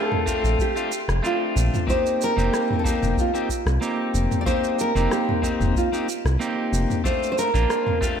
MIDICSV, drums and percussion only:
0, 0, Header, 1, 2, 480
1, 0, Start_track
1, 0, Tempo, 645161
1, 1402, Time_signature, 4, 2, 24, 8
1, 6101, End_track
2, 0, Start_track
2, 0, Title_t, "Drums"
2, 88, Note_on_c, 9, 45, 79
2, 162, Note_off_c, 9, 45, 0
2, 198, Note_on_c, 9, 36, 61
2, 204, Note_on_c, 9, 82, 77
2, 273, Note_off_c, 9, 36, 0
2, 279, Note_off_c, 9, 82, 0
2, 333, Note_on_c, 9, 82, 33
2, 407, Note_off_c, 9, 82, 0
2, 438, Note_on_c, 9, 36, 124
2, 445, Note_on_c, 9, 82, 44
2, 512, Note_off_c, 9, 36, 0
2, 520, Note_off_c, 9, 82, 0
2, 571, Note_on_c, 9, 82, 32
2, 645, Note_off_c, 9, 82, 0
2, 686, Note_on_c, 9, 82, 76
2, 760, Note_off_c, 9, 82, 0
2, 810, Note_on_c, 9, 37, 86
2, 813, Note_on_c, 9, 82, 33
2, 884, Note_off_c, 9, 37, 0
2, 887, Note_off_c, 9, 82, 0
2, 927, Note_on_c, 9, 82, 46
2, 1002, Note_off_c, 9, 82, 0
2, 1168, Note_on_c, 9, 82, 82
2, 1243, Note_off_c, 9, 82, 0
2, 1292, Note_on_c, 9, 45, 86
2, 1295, Note_on_c, 9, 82, 36
2, 1367, Note_off_c, 9, 45, 0
2, 1370, Note_off_c, 9, 82, 0
2, 1398, Note_on_c, 9, 36, 114
2, 1411, Note_on_c, 9, 82, 46
2, 1473, Note_off_c, 9, 36, 0
2, 1485, Note_off_c, 9, 82, 0
2, 1535, Note_on_c, 9, 82, 31
2, 1609, Note_off_c, 9, 82, 0
2, 1649, Note_on_c, 9, 82, 81
2, 1723, Note_off_c, 9, 82, 0
2, 1777, Note_on_c, 9, 82, 35
2, 1851, Note_off_c, 9, 82, 0
2, 1887, Note_on_c, 9, 37, 83
2, 1890, Note_on_c, 9, 82, 47
2, 1962, Note_off_c, 9, 37, 0
2, 1964, Note_off_c, 9, 82, 0
2, 2013, Note_on_c, 9, 45, 75
2, 2087, Note_off_c, 9, 45, 0
2, 2119, Note_on_c, 9, 36, 115
2, 2128, Note_on_c, 9, 82, 81
2, 2193, Note_off_c, 9, 36, 0
2, 2203, Note_off_c, 9, 82, 0
2, 2251, Note_on_c, 9, 45, 56
2, 2254, Note_on_c, 9, 82, 34
2, 2325, Note_off_c, 9, 45, 0
2, 2328, Note_off_c, 9, 82, 0
2, 2359, Note_on_c, 9, 36, 123
2, 2369, Note_on_c, 9, 82, 46
2, 2433, Note_off_c, 9, 36, 0
2, 2443, Note_off_c, 9, 82, 0
2, 2493, Note_on_c, 9, 82, 32
2, 2567, Note_off_c, 9, 82, 0
2, 2599, Note_on_c, 9, 36, 64
2, 2608, Note_on_c, 9, 82, 85
2, 2673, Note_off_c, 9, 36, 0
2, 2682, Note_off_c, 9, 82, 0
2, 2728, Note_on_c, 9, 37, 82
2, 2731, Note_on_c, 9, 82, 34
2, 2803, Note_off_c, 9, 37, 0
2, 2806, Note_off_c, 9, 82, 0
2, 2846, Note_on_c, 9, 82, 47
2, 2920, Note_off_c, 9, 82, 0
2, 3086, Note_on_c, 9, 82, 82
2, 3161, Note_off_c, 9, 82, 0
2, 3209, Note_on_c, 9, 45, 80
2, 3212, Note_on_c, 9, 82, 36
2, 3284, Note_off_c, 9, 45, 0
2, 3287, Note_off_c, 9, 82, 0
2, 3319, Note_on_c, 9, 36, 118
2, 3327, Note_on_c, 9, 82, 49
2, 3393, Note_off_c, 9, 36, 0
2, 3401, Note_off_c, 9, 82, 0
2, 3452, Note_on_c, 9, 82, 32
2, 3527, Note_off_c, 9, 82, 0
2, 3566, Note_on_c, 9, 82, 80
2, 3640, Note_off_c, 9, 82, 0
2, 3693, Note_on_c, 9, 82, 35
2, 3768, Note_off_c, 9, 82, 0
2, 3806, Note_on_c, 9, 37, 79
2, 3808, Note_on_c, 9, 82, 45
2, 3880, Note_off_c, 9, 37, 0
2, 3883, Note_off_c, 9, 82, 0
2, 3935, Note_on_c, 9, 45, 78
2, 4010, Note_off_c, 9, 45, 0
2, 4041, Note_on_c, 9, 36, 65
2, 4050, Note_on_c, 9, 82, 71
2, 4115, Note_off_c, 9, 36, 0
2, 4124, Note_off_c, 9, 82, 0
2, 4173, Note_on_c, 9, 45, 56
2, 4175, Note_on_c, 9, 82, 32
2, 4247, Note_off_c, 9, 45, 0
2, 4250, Note_off_c, 9, 82, 0
2, 4281, Note_on_c, 9, 36, 127
2, 4292, Note_on_c, 9, 82, 45
2, 4355, Note_off_c, 9, 36, 0
2, 4366, Note_off_c, 9, 82, 0
2, 4417, Note_on_c, 9, 82, 33
2, 4491, Note_off_c, 9, 82, 0
2, 4531, Note_on_c, 9, 82, 79
2, 4606, Note_off_c, 9, 82, 0
2, 4655, Note_on_c, 9, 37, 77
2, 4658, Note_on_c, 9, 82, 35
2, 4730, Note_off_c, 9, 37, 0
2, 4732, Note_off_c, 9, 82, 0
2, 4771, Note_on_c, 9, 82, 46
2, 4845, Note_off_c, 9, 82, 0
2, 5012, Note_on_c, 9, 82, 83
2, 5086, Note_off_c, 9, 82, 0
2, 5135, Note_on_c, 9, 45, 78
2, 5138, Note_on_c, 9, 82, 34
2, 5210, Note_off_c, 9, 45, 0
2, 5213, Note_off_c, 9, 82, 0
2, 5243, Note_on_c, 9, 36, 113
2, 5251, Note_on_c, 9, 82, 47
2, 5318, Note_off_c, 9, 36, 0
2, 5325, Note_off_c, 9, 82, 0
2, 5380, Note_on_c, 9, 82, 31
2, 5454, Note_off_c, 9, 82, 0
2, 5493, Note_on_c, 9, 82, 75
2, 5567, Note_off_c, 9, 82, 0
2, 5617, Note_on_c, 9, 82, 33
2, 5691, Note_off_c, 9, 82, 0
2, 5730, Note_on_c, 9, 37, 75
2, 5733, Note_on_c, 9, 82, 47
2, 5804, Note_off_c, 9, 37, 0
2, 5807, Note_off_c, 9, 82, 0
2, 5853, Note_on_c, 9, 45, 78
2, 5927, Note_off_c, 9, 45, 0
2, 5963, Note_on_c, 9, 36, 102
2, 5973, Note_on_c, 9, 82, 73
2, 6037, Note_off_c, 9, 36, 0
2, 6047, Note_off_c, 9, 82, 0
2, 6101, End_track
0, 0, End_of_file